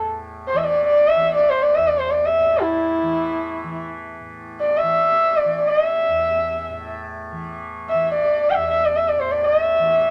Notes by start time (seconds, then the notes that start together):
Already playing: E2 A2 E3
0.48 C5
0.53 E3
0.57 E5
0.64 D5
0.87 D5
1.08 E5
1.16 E3
1.35 D5
1.50 C5
1.63 D5
1.76 E2 E5
1.88 D5
1.99 C5
2.11 D5
2.25 E5
2.39 A2
2.62 E4
3.02 E3
3.63 E3
4.20 A2
4.61 D5
4.78 E5
4.83 E3
5.37 D5
5.45 E3
5.69 D#5
5.84 E5
6.07 E2
6.69 A2
7.32 E3
7.90 E3 E5
8.11 D5
8.50 G5
8.54 E2 E5
8.71 E5
8.85 D5
8.97 E5
9.09 D5
9.17 A2 C5
9.32 D5
9.45 D#5
9.60 E5
9.79 E3